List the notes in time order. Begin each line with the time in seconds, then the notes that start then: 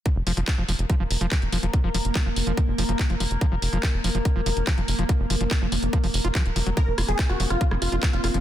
0.06 F3 A#3 A#4, kick, closed hi-hat
0.16 F1
0.27 F1 F3, open hi-hat
0.37 F1 F3, closed hi-hat
0.48 kick, clap, closed hi-hat
0.58 F1 F3
0.69 F1 F3, open hi-hat
0.79 F1, closed hi-hat
0.90 F3, kick, closed hi-hat
1.00 F1 F3
1.11 F1, open hi-hat
1.21 F1 F3, closed hi-hat
1.32 F3, kick, clap, closed hi-hat
1.42 F1, closed hi-hat
1.52 F1 F3, open hi-hat
1.63 F1 F3, closed hi-hat
1.73 kick, closed hi-hat
1.84 F1 F3
1.94 F1 F3, open hi-hat
2.05 F1, closed hi-hat
2.15 F3, kick, clap, closed hi-hat
2.26 F1 F3
2.36 F1, open hi-hat
2.47 F1 F3, closed hi-hat
2.57 F3, kick, closed hi-hat
2.68 F1
2.78 F1 F3, open hi-hat
2.89 F1 F3, closed hi-hat
2.99 kick, clap, closed hi-hat
3.10 F1 F3, closed hi-hat
3.20 F1 F3, open hi-hat
3.31 F1, closed hi-hat
3.41 F3, kick, closed hi-hat
3.52 F1 F3
3.62 F1, open hi-hat
3.73 F1 F3, closed hi-hat
3.83 F3, kick, clap, closed hi-hat
3.94 F1
4.04 F1 F3, open hi-hat
4.15 F1 F3, closed hi-hat
4.25 kick, closed hi-hat
4.36 F1 F3
4.46 F1 F3, open hi-hat
4.57 F1, closed hi-hat
4.67 F3, kick, clap, closed hi-hat
4.78 F1 F3, closed hi-hat
4.88 F1, open hi-hat
4.99 F1 F3, closed hi-hat
5.09 F3, kick, closed hi-hat
5.20 F1
5.30 F1 F3, open hi-hat
5.41 F1 F3, closed hi-hat
5.51 kick, clap, closed hi-hat
5.62 F1 F3
5.72 F1 F3, open hi-hat
5.83 F1, closed hi-hat
5.93 F3, kick, closed hi-hat
6.04 F1 F3, open hi-hat
6.14 F1, open hi-hat
6.25 F1 F4, closed hi-hat
6.35 F3, kick, clap, closed hi-hat
6.46 D#1, closed hi-hat
6.56 F1 F3, open hi-hat
6.66 F1 F#3, closed hi-hat
6.77 F3 C4 A#4, kick, cross-stick, closed hi-hat
6.88 F1
6.98 F1 F4, cross-stick, open hi-hat
7.08 F1 F3 G#4, closed hi-hat
7.19 kick, clap, closed hi-hat
7.29 F1 F4 F#4, cross-stick
7.40 F1 F3, open hi-hat
7.50 F1 F4, cross-stick, closed hi-hat
7.61 F4, kick, closed hi-hat
7.71 F1 F3, cross-stick
7.82 F1 F4, open hi-hat
7.92 F1 F4, closed hi-hat
8.03 F3, kick, cross-stick, clap, closed hi-hat
8.13 F1 F4, closed hi-hat
8.24 F1 F4, cross-stick, open hi-hat
8.34 F1 F3, closed hi-hat